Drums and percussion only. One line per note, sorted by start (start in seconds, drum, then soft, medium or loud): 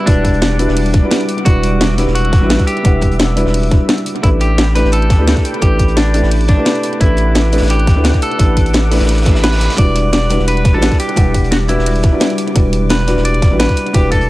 0.07 kick loud
0.07 closed hi-hat medium
0.07 closed hi-hat loud
0.25 kick medium
0.25 closed hi-hat medium
0.34 closed hi-hat soft
0.42 snare loud
0.42 closed hi-hat medium
0.42 closed hi-hat loud
0.59 closed hi-hat medium
0.59 open hi-hat medium
0.68 snare medium
0.77 closed hi-hat loud
0.77 open hi-hat medium
0.86 closed hi-hat soft
0.93 kick loud
0.93 snare soft
0.93 closed hi-hat medium
1.11 snare loud
1.11 closed hi-hat loud
1.21 closed hi-hat soft
1.28 closed hi-hat medium
1.28 open hi-hat medium
1.38 closed hi-hat soft
1.45 kick loud
1.45 closed hi-hat medium
1.45 closed hi-hat loud
1.63 closed hi-hat medium
1.81 snare loud
1.81 closed hi-hat loud
1.91 snare soft
1.98 snare medium
1.98 closed hi-hat medium
1.98 open hi-hat medium
2.07 snare soft
2.15 closed hi-hat medium
2.15 closed hi-hat loud
2.25 closed hi-hat soft
2.33 kick loud
2.33 snare soft
2.33 closed hi-hat medium
2.50 snare loud
2.50 closed hi-hat medium
2.50 closed hi-hat loud
2.58 kick medium
2.58 snare medium
2.58 closed hi-hat soft
2.67 closed hi-hat medium
2.67 open hi-hat medium
2.77 closed hi-hat soft
2.85 kick loud
2.85 closed hi-hat medium
2.85 closed hi-hat loud
3.01 kick medium
3.01 closed hi-hat medium
3.12 closed hi-hat soft
3.19 snare loud
3.19 closed hi-hat medium
3.37 closed hi-hat medium
3.37 open hi-hat medium
3.46 snare medium
3.54 closed hi-hat medium
3.54 open hi-hat medium
3.63 closed hi-hat soft
3.71 kick loud
3.71 snare soft
3.71 closed hi-hat medium
3.89 snare loud
3.89 closed hi-hat medium
3.98 closed hi-hat soft
4.06 closed hi-hat medium
4.06 open hi-hat medium
4.16 closed hi-hat soft
4.23 kick loud
4.23 closed hi-hat medium
4.40 closed hi-hat medium
4.58 snare loud
4.58 closed hi-hat medium
4.67 snare soft
4.75 snare soft
4.75 closed hi-hat medium
4.75 open hi-hat medium
4.85 snare soft
4.92 closed hi-hat medium
4.92 closed hi-hat loud
5.02 closed hi-hat soft
5.10 kick loud
5.10 snare medium
5.10 closed hi-hat medium
5.27 snare loud
5.27 closed hi-hat medium
5.37 kick medium
5.37 snare soft
5.37 closed hi-hat soft
5.45 closed hi-hat medium
5.45 open hi-hat medium
5.54 closed hi-hat soft
5.62 kick loud
5.62 closed hi-hat medium
5.79 kick medium
5.79 closed hi-hat medium
5.88 closed hi-hat soft
5.97 snare loud
5.97 closed hi-hat medium
6.14 closed hi-hat medium
6.14 open hi-hat medium
6.23 snare medium
6.31 closed hi-hat loud
6.31 open hi-hat medium
6.41 closed hi-hat soft
6.48 kick loud
6.48 snare soft
6.48 closed hi-hat medium
6.65 snare loud
6.65 closed hi-hat medium
6.75 closed hi-hat soft
6.83 closed hi-hat medium
6.83 open hi-hat medium
6.93 closed hi-hat soft
7.01 kick loud
7.01 closed hi-hat medium
7.01 closed hi-hat loud
7.17 closed hi-hat medium
7.35 snare loud
7.35 closed hi-hat medium
7.44 snare soft
7.52 closed hi-hat medium
7.52 open hi-hat medium
7.57 snare loud
7.57 closed hi-hat medium
7.62 snare medium
7.62 closed hi-hat medium
7.66 snare loud
7.66 closed hi-hat medium
7.70 closed hi-hat medium
7.79 closed hi-hat soft
7.87 kick loud
7.87 snare medium
7.87 closed hi-hat medium
8.04 snare loud
8.04 closed hi-hat medium
8.14 kick medium
8.14 snare soft
8.14 closed hi-hat soft
8.22 closed hi-hat medium
8.22 open hi-hat medium
8.31 closed hi-hat soft
8.39 kick loud
8.39 closed hi-hat medium
8.39 closed hi-hat loud
8.57 kick medium
8.57 closed hi-hat medium
8.66 closed hi-hat soft
8.73 snare loud
8.73 closed hi-hat medium
8.73 closed hi-hat loud
8.91 snare loud
8.91 snare soft
8.91 closed hi-hat medium
8.91 open hi-hat medium
8.96 snare medium
8.96 closed hi-hat medium
9.00 snare loud
9.00 closed hi-hat medium
9.04 snare loud
9.04 closed hi-hat medium
9.09 snare medium
9.09 closed hi-hat loud
9.09 closed hi-hat medium
9.13 snare medium
9.13 closed hi-hat medium
9.18 closed hi-hat medium
9.18 closed hi-hat soft
9.22 snare medium
9.22 closed hi-hat medium
9.25 kick loud
9.25 snare loud
9.25 closed hi-hat medium
9.35 snare loud
9.35 closed hi-hat medium
9.43 snare loud
9.43 closed hi-hat medium
9.43 closed hi-hat loud
9.52 snare loud
9.52 closed hi-hat medium
9.52 closed hi-hat soft
9.56 snare medium
9.56 closed hi-hat medium
9.61 snare loud
9.61 closed hi-hat medium
9.61 open hi-hat medium
9.70 snare loud
9.70 closed hi-hat soft
9.70 closed hi-hat medium
9.78 kick loud
9.78 closed hi-hat medium
9.78 closed hi-hat loud
9.78 ride medium
9.96 closed hi-hat medium
9.96 ride medium
10.13 snare loud
10.13 closed hi-hat loud
10.13 closed hi-hat medium
10.13 ride medium
10.22 snare soft
10.29 snare medium
10.29 closed hi-hat medium
10.29 open hi-hat medium
10.29 ride medium
10.39 snare soft
10.48 closed hi-hat medium
10.48 closed hi-hat loud
10.48 ride medium
10.57 closed hi-hat soft
10.64 kick loud
10.64 snare soft
10.64 closed hi-hat medium
10.64 ride medium
10.82 snare loud
10.82 closed hi-hat loud
10.82 ride medium
10.92 kick medium
10.92 snare medium
10.92 closed hi-hat soft
11.00 closed hi-hat medium
11.00 open hi-hat medium
11.00 ride medium
11.09 closed hi-hat soft
11.16 kick loud
11.16 closed hi-hat medium
11.16 closed hi-hat loud
11.16 ride medium
11.34 kick medium
11.34 closed hi-hat medium
11.34 ride medium
11.44 closed hi-hat soft
11.52 snare loud
11.52 closed hi-hat medium
11.52 closed hi-hat loud
11.52 ride medium
11.68 closed hi-hat medium
11.68 open hi-hat medium
11.68 ride medium
11.79 snare medium
11.86 closed hi-hat loud
11.86 open hi-hat medium
11.86 ride medium
11.96 closed hi-hat soft
12.03 kick loud
12.03 snare soft
12.03 closed hi-hat medium
12.03 ride medium
12.20 snare loud
12.20 closed hi-hat loud
12.20 closed hi-hat medium
12.20 ride medium
12.30 closed hi-hat soft
12.38 closed hi-hat medium
12.38 open hi-hat medium
12.38 ride medium
12.48 closed hi-hat soft
12.56 kick loud
12.56 closed hi-hat loud
12.56 closed hi-hat medium
12.56 ride medium
12.73 closed hi-hat medium
12.73 ride medium
12.89 snare loud
12.89 closed hi-hat loud
12.89 ride medium
12.99 snare soft
13.07 snare medium
13.07 closed hi-hat medium
13.07 open hi-hat medium
13.07 ride medium
13.17 snare soft
13.25 closed hi-hat medium
13.25 closed hi-hat loud
13.25 ride medium
13.34 closed hi-hat soft
13.42 kick loud
13.42 snare medium
13.42 closed hi-hat medium
13.42 ride medium
13.59 snare loud
13.59 closed hi-hat medium
13.59 closed hi-hat loud
13.59 ride medium
13.69 kick medium
13.69 snare medium
13.69 closed hi-hat soft
13.77 closed hi-hat medium
13.77 open hi-hat medium
13.77 ride medium
13.87 closed hi-hat soft
13.94 kick loud
13.94 closed hi-hat medium
13.94 ride medium
14.12 kick medium
14.12 closed hi-hat medium
14.12 ride medium
14.21 closed hi-hat soft